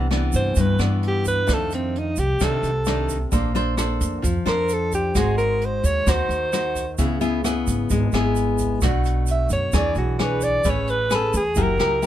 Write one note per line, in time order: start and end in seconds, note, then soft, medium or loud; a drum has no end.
0.00 0.29 C2 medium
0.00 0.54 C3 soft
0.11 0.76 E3 medium
0.11 0.76 B3 medium
0.11 0.76 D4 medium
0.11 cross-stick medium
0.11 closed hi-hat soft
0.32 0.55 G2 medium
0.32 0.63 C5 medium
0.32 kick soft
0.32 closed hi-hat soft
0.32 shaker medium
0.55 0.78 G2 medium
0.55 1.46 G2 medium
0.55 kick medium
0.55 closed hi-hat medium
0.55 shaker medium
0.61 0.81 B4 medium
0.79 1.44 G2 medium
0.79 1.44 E3 medium
0.79 1.44 B3 medium
0.79 1.45 D4 medium
0.79 cross-stick medium
0.79 closed hi-hat soft
0.79 shaker soft
0.83 0.99 D4 soft
1.03 closed hi-hat soft
1.07 1.27 G4 medium
1.25 1.55 B4 loud
1.25 kick soft
1.25 closed hi-hat soft
1.25 shaker medium
1.47 2.37 F2 soft
1.47 2.13 F2 medium
1.47 2.09 D#3 soft
1.47 2.09 A3 soft
1.47 2.09 D4 soft
1.47 kick medium
1.47 cross-stick medium
1.47 closed hi-hat medium
1.47 shaker medium
1.54 1.74 A4 medium
1.71 2.00 C4 medium
1.71 closed hi-hat soft
1.71 shaker soft
1.95 2.20 D#4 medium
1.95 closed hi-hat soft
2.16 2.38 C2 medium
2.16 2.45 G4 medium
2.16 kick soft
2.16 closed hi-hat soft
2.16 shaker medium
2.40 2.61 C2 medium
2.40 3.30 C3 medium
2.40 2.70 D#3 medium
2.40 2.70 A3 medium
2.40 2.70 D4 medium
2.40 kick medium
2.40 cross-stick medium
2.40 closed hi-hat medium
2.40 shaker medium
2.44 3.34 A4 medium
2.63 3.28 C2 medium
2.63 closed hi-hat soft
2.63 shaker soft
2.85 3.17 D#3 medium
2.85 3.17 A3 medium
2.85 3.17 D4 soft
2.85 cross-stick medium
2.85 closed hi-hat soft
2.85 shaker soft
3.09 kick soft
3.09 closed hi-hat soft
3.09 shaker medium
3.32 3.97 A#1 medium
3.32 4.22 A#3 soft
3.32 3.51 D4 soft
3.32 3.51 A4 medium
3.32 3.52 C5 soft
3.32 kick medium
3.32 closed hi-hat soft
3.32 shaker medium
3.55 3.74 D4 medium
3.55 3.74 A4 medium
3.55 3.75 C5 medium
3.55 closed hi-hat soft
3.55 shaker soft
3.77 4.23 D4 medium
3.77 4.23 A4 medium
3.77 4.24 C5 medium
3.77 cross-stick medium
3.77 closed hi-hat soft
3.77 shaker medium
4.01 4.22 F2 medium
4.01 kick soft
4.01 closed hi-hat soft
4.01 shaker medium
4.22 4.45 F2 medium
4.22 5.12 F3 medium
4.22 kick medium
4.22 closed hi-hat medium
4.22 shaker medium
4.46 5.11 F2 medium
4.46 5.11 D4 medium
4.46 5.11 A4 medium
4.46 4.75 A#4 medium
4.46 5.12 C5 medium
4.46 cross-stick medium
4.46 closed hi-hat soft
4.46 shaker soft
4.69 closed hi-hat soft
4.69 shaker soft
4.73 4.94 A4 medium
4.92 5.20 G4 medium
4.92 kick soft
4.92 closed hi-hat soft
4.92 shaker medium
5.15 5.80 G#1 medium
5.15 6.05 G#3 soft
5.15 6.03 D#4 soft
5.15 6.04 F#4 soft
5.15 5.37 G#4 medium
5.15 6.04 C5 medium
5.15 kick medium
5.15 cross-stick medium
5.15 closed hi-hat medium
5.15 shaker medium
5.38 5.67 A#4 medium
5.38 closed hi-hat soft
5.38 shaker soft
5.61 5.87 C5 medium
5.61 closed hi-hat soft
5.84 6.05 D#2 medium
5.84 6.12 C#5 loud
5.84 kick soft
5.84 closed hi-hat soft
5.84 shaker medium
6.07 6.28 D#2 medium
6.07 6.96 D#3 medium
6.07 6.49 D#4 soft
6.07 6.49 F#4 medium
6.07 6.50 C5 medium
6.07 7.00 C5 medium
6.07 kick medium
6.07 cross-stick medium
6.07 closed hi-hat medium
6.07 shaker medium
6.29 6.94 D#2 medium
6.29 closed hi-hat soft
6.29 shaker soft
6.53 6.84 D#4 medium
6.53 6.84 F#4 medium
6.53 6.84 C5 medium
6.53 cross-stick medium
6.53 closed hi-hat soft
6.53 shaker soft
6.76 kick soft
6.76 closed hi-hat soft
6.76 shaker medium
6.98 7.63 C#2 medium
6.98 7.88 C#3 soft
6.98 7.18 B3 soft
6.98 7.18 E4 soft
6.98 7.18 G#4 soft
6.98 kick medium
6.98 closed hi-hat medium
6.98 shaker medium
7.21 7.40 B3 medium
7.21 7.40 E4 medium
7.21 7.41 G#4 medium
7.21 closed hi-hat soft
7.21 shaker soft
7.44 8.09 B3 soft
7.44 8.10 E4 soft
7.44 8.09 G#4 medium
7.44 cross-stick medium
7.44 closed hi-hat soft
7.44 shaker medium
7.67 7.88 G#1 medium
7.67 kick soft
7.67 closed hi-hat soft
7.67 shaker medium
7.90 8.11 G#1 medium
7.90 8.80 G#3 medium
7.90 kick medium
7.90 closed hi-hat medium
7.90 shaker medium
8.12 8.77 G#1 medium
8.12 8.78 B3 medium
8.12 8.78 E4 medium
8.12 8.79 G#4 medium
8.12 cross-stick medium
8.12 closed hi-hat soft
8.12 shaker soft
8.36 closed hi-hat soft
8.36 shaker soft
8.58 kick soft
8.58 closed hi-hat soft
8.58 shaker medium
8.81 9.46 B1 medium
8.81 9.71 B2 soft
8.81 9.70 A3 soft
8.81 9.70 D4 soft
8.81 9.71 F#4 medium
8.81 kick medium
8.81 cross-stick medium
8.81 closed hi-hat medium
8.81 shaker medium
9.04 closed hi-hat soft
9.04 shaker soft
9.26 closed hi-hat soft
9.26 shaker medium
9.31 9.51 E5 medium
9.50 9.71 F#2 medium
9.50 9.79 C#5 medium
9.50 kick soft
9.50 closed hi-hat soft
9.50 shaker medium
9.72 9.94 E2 medium
9.72 10.62 E3 medium
9.72 10.15 D4 medium
9.72 10.16 G#4 medium
9.72 10.15 C#5 medium
9.72 kick medium
9.72 cross-stick medium
9.72 closed hi-hat medium
9.72 shaker medium
9.77 9.97 D5 medium
9.95 10.60 B1 medium
9.95 10.25 F#4 medium
9.95 closed hi-hat soft
9.95 shaker soft
10.19 10.63 D4 medium
10.19 10.63 G#4 medium
10.19 10.45 B4 medium
10.19 10.63 C#5 medium
10.19 cross-stick medium
10.19 closed hi-hat soft
10.41 10.71 D5 loud
10.41 kick soft
10.41 closed hi-hat soft
10.41 shaker medium
10.64 11.29 A1 medium
10.64 11.54 A3 soft
10.64 11.07 C#4 soft
10.64 11.07 G#4 soft
10.64 11.07 B4 medium
10.64 kick medium
10.64 closed hi-hat medium
10.64 shaker medium
10.69 10.92 C#5 medium
10.87 11.16 B4 medium
10.87 closed hi-hat soft
10.87 shaker soft
11.10 11.41 C#4 soft
11.10 11.41 G#4 medium
11.10 11.42 B4 medium
11.10 cross-stick medium
11.10 closed hi-hat soft
11.10 shaker medium
11.15 11.35 A4 medium
11.34 11.55 E2 medium
11.34 11.64 G#4 medium
11.34 kick soft
11.34 closed hi-hat soft
11.34 shaker medium
11.55 11.77 F#1 medium
11.55 12.06 F#3 medium
11.55 11.75 E4 medium
11.55 11.76 G4 medium
11.55 11.76 A#4 medium
11.55 kick medium
11.55 closed hi-hat medium
11.55 shaker medium
11.62 12.06 A#4 medium
11.78 12.06 C#2 medium
11.78 11.98 E4 medium
11.78 11.98 G4 medium
11.78 11.99 A#4 medium
11.78 cross-stick medium
11.78 closed hi-hat soft
11.78 shaker soft
12.02 12.06 E4 medium
12.02 12.06 G4 medium
12.02 closed hi-hat soft
12.02 shaker soft